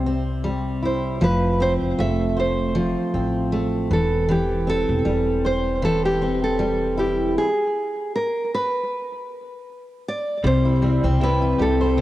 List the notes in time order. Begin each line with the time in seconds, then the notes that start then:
Already playing: C2 C3 G3 C5
0.06 C4
0.44 G3
0.83 E4 C5
1.21 F1 F3 B4
1.60 C4 C5
1.81 F1
1.99 F1 A3 E5
2.37 C5
2.75 F3
3.14 A1 C4
3.52 A3
3.91 E1 E3 A4
4.29 E3 G4
4.67 C4 A4
4.89 E1
5.05 E1 G3
5.45 C5
5.82 E3 A4
6.05 G4
6.22 C4
6.44 A4
6.59 G3
6.97 E4 G4
7.38 G#4
8.15 A#4
8.54 B4
10.08 D5
10.44 C2 C3 G3 C5
10.65 E4
10.82 G3 C4
11.03 C2 C4
11.21 C3 E4 B4
11.42 E4
11.58 C2 G3 G4 A4
11.81 C5
11.97 C3 C4